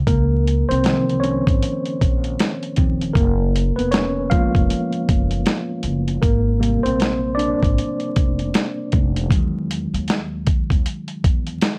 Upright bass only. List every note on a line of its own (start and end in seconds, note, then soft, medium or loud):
0.07 0.62 C#2 loud
0.70 1.37 C2 medium
1.47 1.60 G#1 medium
2.01 2.34 A#1 medium
2.78 3.11 D#1 medium
3.15 3.70 F#1 medium
3.78 4.45 F1 medium
4.55 4.67 F1 medium
5.09 5.42 F#1 medium
5.84 6.18 F#1 medium
6.23 6.78 G#1 medium
6.85 7.53 A#1 medium
7.63 7.75 G#1 medium
8.17 8.50 F1 medium
8.93 9.26 F1 medium
9.30 9.85 E2 loud
9.94 10.61 D#2 medium
10.70 10.83 D#2 medium
11.25 11.58 E2 medium